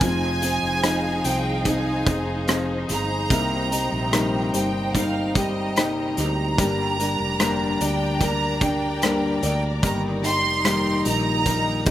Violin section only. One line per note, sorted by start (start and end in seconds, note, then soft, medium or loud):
0.00 1.25 G#5 loud
1.26 1.67 G5 medium
1.68 2.45 G#5 medium
2.91 4.51 A#5 loud
4.55 4.93 G5 medium
4.96 5.36 F5 medium
5.37 6.14 D#5 medium
6.20 7.81 A#5 loud
7.83 8.22 G5 medium
8.23 8.63 A#5 loud
8.63 9.44 G5 medium
9.45 9.63 G5 medium
9.85 10.03 A#5 medium
10.25 11.02 C6 loud
11.07 11.88 A#5 loud